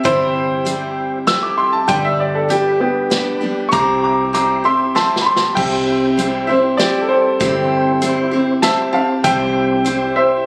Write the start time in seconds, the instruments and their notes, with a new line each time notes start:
0.04 fingered electric bass G1, steel-string acoustic guitar C3 G3 C4 E4 G4, upright piano E4 C5, tonewheel organ E4 G4 C5, kick, closed hi-hat
0.65 steel-string acoustic guitar G3 C4 E4 G4, tonewheel organ E4 G4 C5, closed hi-hat
1.27 steel-string acoustic guitar G3 C4 E4 G4, tonewheel organ E4 G4 A4, upright piano E6, snare, closed hi-hat
1.43 upright piano D6
1.58 upright piano C6
1.73 upright piano A5
1.88 fingered electric bass G1, steel-string acoustic guitar G2 D3 G3 B3 D4 G4, tonewheel organ D4 G4 B4, upright piano G5, kick, closed hi-hat
2.05 upright piano E5
2.20 upright piano D5
2.35 upright piano A4
2.49 steel-string acoustic guitar G3 B3 D4 G4, tonewheel organ D4 G4 B4, upright piano G4, closed hi-hat
2.80 upright piano B3 G4
3.10 steel-string acoustic guitar G3 B3 D4 G4, tonewheel organ D4 G4 B4, snare, closed hi-hat
3.41 steel-string acoustic guitar G3 B3 D4 G4
3.69 steel-string acoustic guitar C3 G3 C4, tonewheel organ E4 G4 C5, upright piano A#5 C#6
3.73 fingered electric bass C2, steel-string acoustic guitar E4 G4, upright piano D6, kick, closed hi-hat
4.03 upright piano A#5 D6
4.33 steel-string acoustic guitar G3 C4 E4 G4, tonewheel organ E4 G4 C5, upright piano A#5 D6, closed hi-hat
4.64 steel-string acoustic guitar C4 E4 G4, upright piano E5 C6
4.95 steel-string acoustic guitar G3 C4 E4 G4, tonewheel organ E4 G4 C5, upright piano E5 A5 C6, snare
5.16 snare
5.22 upright piano B5
5.26 upright piano C6
5.36 snare
5.55 fingered electric bass C2, steel-string acoustic guitar C3 G3 C4 E4 G4, tonewheel organ C4 E4 G4 C5, upright piano E5 G5, kick, crash
6.17 steel-string acoustic guitar G3 C4 E4, tonewheel organ C4 E4 G4 C5, closed hi-hat
6.21 steel-string acoustic guitar G4
6.47 steel-string acoustic guitar C4 E4 G4, upright piano C5 E5
6.77 steel-string acoustic guitar G3 C4 E4 G4, tonewheel organ C4 E4 G4 D5, upright piano G4 D5, snare, closed hi-hat
7.02 upright piano A4
7.09 upright piano A4 C5
7.40 fingered electric bass G1, steel-string acoustic guitar C3 G3 C4 E4 G4, tonewheel organ C4 E4 G4 C5, kick, closed hi-hat
8.01 steel-string acoustic guitar G3 C4 E4 G4, tonewheel organ C4 E4 G4 C5, closed hi-hat
8.31 steel-string acoustic guitar C4 E4 G4
8.62 steel-string acoustic guitar G3 C4 E4 G4, tonewheel organ C4 E4 G4 C5, upright piano E5 A5, snare, closed hi-hat
8.93 steel-string acoustic guitar C4 G4, upright piano F5 A5
9.24 fingered electric bass C2, steel-string acoustic guitar C3 G3 C4 E4 G4, tonewheel organ C4 E4 G4 C5, upright piano E5 G5, kick, closed hi-hat
9.85 steel-string acoustic guitar G3 C4 E4 G4, tonewheel organ C4 E4 G4 C5, closed hi-hat
10.16 upright piano C5 E5